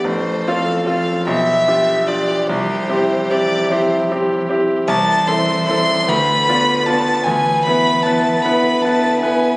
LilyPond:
<<
  \new Staff \with { instrumentName = "Violin" } { \time 6/8 \key c \major \tempo 4. = 50 c''8 f''8 f''8 e''4 d''8 | c''4 d''8 c''8 r4 | \key e \phrygian a''8 c'''8 c'''8 b''4 a''8 | gis''8 b''8 a''8 b''8 a''8 gis''8 | }
  \new Staff \with { instrumentName = "Violin" } { \time 6/8 \key c \major a'4. g'4.~ | g'2. | \key e \phrygian c''4. b'4. | b'2. | }
  \new Staff \with { instrumentName = "Grand piano" } { \time 6/8 \key c \major a,,8 <c' f' a'>8 <c' f' a'>8 b,,8 <d' f' g'>8 <d' f' g'>8 | c,8 <c' e' g'>8 <c' e' g'>8 <c' e' g'>8 <c' e' g'>8 <c' e' g'>8 | \key e \phrygian c,8 <c' e' a'>8 <c' e' a'>8 d,8 <b f' d''>8 <b f' d''>8 | d,8 <b e' b'>8 <b e' b'>8 <b e' b'>8 <b e' b'>8 <b e' b'>8 | }
  \new Staff \with { instrumentName = "Cello" } { \clef bass \time 6/8 \key c \major f2. | e2. | \key e \phrygian e4. d4. | e4. d4. | }
>>